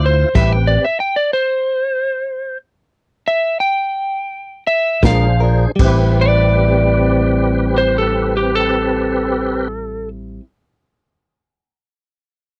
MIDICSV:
0, 0, Header, 1, 6, 480
1, 0, Start_track
1, 0, Key_signature, 0, "minor"
1, 0, Tempo, 634249
1, 265, Time_signature, 4, 2, 24, 8
1, 1709, Tempo, 681044
1, 3149, Tempo, 746269
1, 4109, Tempo, 781250
1, 8285, End_track
2, 0, Start_track
2, 0, Title_t, "Lead electric guitar"
2, 0, Program_c, 0, 29
2, 43, Note_on_c, 0, 72, 83
2, 265, Note_off_c, 0, 72, 0
2, 267, Note_on_c, 0, 76, 89
2, 397, Note_off_c, 0, 76, 0
2, 397, Note_on_c, 0, 79, 80
2, 503, Note_off_c, 0, 79, 0
2, 510, Note_on_c, 0, 74, 82
2, 626, Note_off_c, 0, 74, 0
2, 639, Note_on_c, 0, 76, 94
2, 743, Note_off_c, 0, 76, 0
2, 757, Note_on_c, 0, 79, 76
2, 869, Note_off_c, 0, 79, 0
2, 880, Note_on_c, 0, 74, 78
2, 984, Note_off_c, 0, 74, 0
2, 1009, Note_on_c, 0, 72, 92
2, 1926, Note_off_c, 0, 72, 0
2, 2426, Note_on_c, 0, 76, 89
2, 2653, Note_off_c, 0, 76, 0
2, 2656, Note_on_c, 0, 79, 85
2, 3361, Note_off_c, 0, 79, 0
2, 3387, Note_on_c, 0, 76, 76
2, 3614, Note_off_c, 0, 76, 0
2, 3632, Note_on_c, 0, 77, 90
2, 3860, Note_off_c, 0, 77, 0
2, 4367, Note_on_c, 0, 74, 84
2, 5293, Note_off_c, 0, 74, 0
2, 5328, Note_on_c, 0, 72, 82
2, 5439, Note_off_c, 0, 72, 0
2, 5453, Note_on_c, 0, 69, 88
2, 5676, Note_off_c, 0, 69, 0
2, 5690, Note_on_c, 0, 67, 72
2, 5805, Note_off_c, 0, 67, 0
2, 5805, Note_on_c, 0, 69, 81
2, 6744, Note_off_c, 0, 69, 0
2, 8285, End_track
3, 0, Start_track
3, 0, Title_t, "Tonewheel organ"
3, 0, Program_c, 1, 16
3, 0, Note_on_c, 1, 64, 70
3, 0, Note_on_c, 1, 65, 61
3, 0, Note_on_c, 1, 72, 75
3, 218, Note_off_c, 1, 64, 0
3, 219, Note_off_c, 1, 65, 0
3, 219, Note_off_c, 1, 72, 0
3, 267, Note_on_c, 1, 60, 81
3, 269, Note_on_c, 1, 67, 68
3, 269, Note_on_c, 1, 71, 88
3, 649, Note_off_c, 1, 60, 0
3, 650, Note_off_c, 1, 67, 0
3, 650, Note_off_c, 1, 71, 0
3, 3613, Note_on_c, 1, 68, 72
3, 3616, Note_on_c, 1, 72, 88
3, 3618, Note_on_c, 1, 62, 83
3, 4057, Note_off_c, 1, 68, 0
3, 4059, Note_off_c, 1, 72, 0
3, 4060, Note_off_c, 1, 62, 0
3, 4109, Note_on_c, 1, 67, 69
3, 4110, Note_on_c, 1, 71, 86
3, 4111, Note_on_c, 1, 60, 84
3, 6496, Note_off_c, 1, 67, 0
3, 6497, Note_off_c, 1, 60, 0
3, 6497, Note_off_c, 1, 71, 0
3, 8285, End_track
4, 0, Start_track
4, 0, Title_t, "Clean electric guitar"
4, 0, Program_c, 2, 27
4, 265, Note_on_c, 2, 55, 72
4, 272, Note_on_c, 2, 60, 71
4, 278, Note_on_c, 2, 64, 62
4, 282, Note_on_c, 2, 71, 73
4, 411, Note_off_c, 2, 55, 0
4, 414, Note_off_c, 2, 60, 0
4, 417, Note_off_c, 2, 64, 0
4, 419, Note_off_c, 2, 71, 0
4, 3616, Note_on_c, 2, 56, 80
4, 3620, Note_on_c, 2, 62, 80
4, 3626, Note_on_c, 2, 65, 79
4, 3629, Note_on_c, 2, 70, 87
4, 3765, Note_off_c, 2, 56, 0
4, 3767, Note_off_c, 2, 62, 0
4, 3770, Note_off_c, 2, 65, 0
4, 3772, Note_off_c, 2, 70, 0
4, 3858, Note_on_c, 2, 70, 47
4, 3868, Note_on_c, 2, 65, 44
4, 3877, Note_on_c, 2, 62, 41
4, 4011, Note_off_c, 2, 70, 0
4, 4016, Note_off_c, 2, 65, 0
4, 4021, Note_off_c, 2, 62, 0
4, 4086, Note_on_c, 2, 55, 68
4, 4116, Note_on_c, 2, 60, 67
4, 4141, Note_on_c, 2, 64, 85
4, 4162, Note_on_c, 2, 71, 77
4, 6940, Note_off_c, 2, 55, 0
4, 6954, Note_off_c, 2, 60, 0
4, 6967, Note_off_c, 2, 64, 0
4, 6977, Note_off_c, 2, 71, 0
4, 8285, End_track
5, 0, Start_track
5, 0, Title_t, "Fingered electric bass"
5, 0, Program_c, 3, 33
5, 0, Note_on_c, 3, 38, 88
5, 177, Note_off_c, 3, 38, 0
5, 267, Note_on_c, 3, 33, 110
5, 577, Note_off_c, 3, 33, 0
5, 3619, Note_on_c, 3, 34, 92
5, 4017, Note_off_c, 3, 34, 0
5, 4110, Note_on_c, 3, 33, 86
5, 6927, Note_off_c, 3, 33, 0
5, 8285, End_track
6, 0, Start_track
6, 0, Title_t, "Drums"
6, 266, Note_on_c, 9, 36, 101
6, 267, Note_on_c, 9, 42, 63
6, 267, Note_on_c, 9, 49, 77
6, 341, Note_off_c, 9, 36, 0
6, 343, Note_off_c, 9, 42, 0
6, 343, Note_off_c, 9, 49, 0
6, 3617, Note_on_c, 9, 36, 83
6, 3619, Note_on_c, 9, 42, 67
6, 3625, Note_on_c, 9, 38, 104
6, 3681, Note_off_c, 9, 36, 0
6, 3684, Note_off_c, 9, 42, 0
6, 3689, Note_off_c, 9, 38, 0
6, 4108, Note_on_c, 9, 36, 90
6, 4108, Note_on_c, 9, 49, 89
6, 4169, Note_off_c, 9, 49, 0
6, 4170, Note_off_c, 9, 36, 0
6, 8285, End_track
0, 0, End_of_file